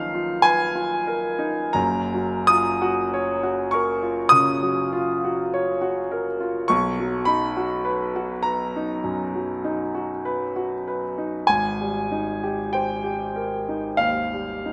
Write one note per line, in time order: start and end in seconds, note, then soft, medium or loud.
0.00 1.78 D#3 medium
0.00 1.78 F3 medium
0.00 1.39 D#4 medium
0.00 0.14 F4 medium
0.00 1.07 A#4 medium
0.00 0.41 F5 loud
0.14 0.62 F4 medium
0.42 0.93 B4 medium
0.42 1.75 G#5 loud
0.75 1.26 F4 medium
1.07 1.61 A#4 medium
1.39 1.75 D#4 medium
1.73 4.24 F#1 medium
1.73 4.24 F#2 medium
1.73 2.46 A#5 loud
2.14 2.68 F#3 medium
2.47 3.00 F4 medium
2.47 3.70 D#6 loud
2.82 3.29 F#4 medium
3.14 3.59 C#5 medium
3.43 3.89 F#4 medium
3.71 4.18 A#4 medium
3.71 4.29 C#6 medium
4.03 4.48 F4 medium
4.29 4.78 C#3 medium
4.29 6.67 D#6 loud
4.63 5.10 F#3 medium
4.93 5.40 F4 medium
5.24 5.70 F#4 medium
5.54 5.99 C#5 medium
5.81 6.27 F#4 medium
6.11 6.56 A#4 medium
6.40 6.68 F4 medium
6.68 8.99 B1 medium
6.68 7.26 C#6 loud
7.00 7.45 F#3 medium
7.25 7.73 D#4 medium
7.25 8.43 B5 loud
7.57 8.02 F#4 medium
7.85 8.31 B4 medium
8.16 8.62 F#4 medium
8.43 8.90 B4 medium
8.43 10.21 A#5 medium
8.76 9.21 D#4 medium
9.04 9.50 F#2 medium
9.35 9.81 F#3 medium
9.64 10.11 D#4 medium
9.95 10.41 F#4 medium
10.25 10.72 B4 medium
10.56 11.04 F#4 medium
10.88 11.35 B4 medium
11.18 11.47 D#4 medium
11.47 13.97 G#1 medium
11.47 12.71 G#5 loud
11.80 12.28 G3 soft
12.12 12.59 D#4 medium
12.43 12.91 G4 medium
12.73 13.23 C5 medium
12.73 14.00 G5 medium
13.04 13.54 G4 medium
13.36 13.87 A#4 soft
13.69 14.19 D#4 soft
13.97 14.51 D#2 soft
13.97 14.73 F5 medium
14.32 14.73 G3 soft
14.65 14.73 D#4 soft